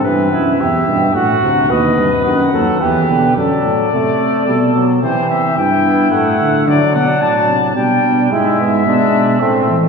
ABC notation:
X:1
M:3/4
L:1/8
Q:1/4=109
K:Ddor
V:1 name="Trumpet"
B2 e2 ^f2 | ^d2 ^f2 B2 | d6 | c e g2 ^f2 |
d ^f a2 g2 | e4 e z |]
V:2 name="Flugelhorn"
B, E G2 ^F2 | B3 A G2 | A2 A4 | G2 E4 |
D4 D2 | E B, D2 C z |]
V:3 name="Trombone" clef=bass
E, B,, C, B,, A,, C, | B,, C, ^D, ^F, E, =D, | ^F,2 A,2 G, F, | E,2 E, B, A,2 |
^F,2 F,2 G,2 | ^G,2 G,2 A, z |]
V:4 name="Tuba" clef=bass
G,, ^F,, E,, G,, A,, D,, | ^D,, G,, ^F,, D,, E,, B,, | ^F,, A,, C,2 B,,2 | C, C, G,,2 A,, D, |
D, B,, A,, C, B,, B,, | ^G,, G,, B,, B,, A,, E, |]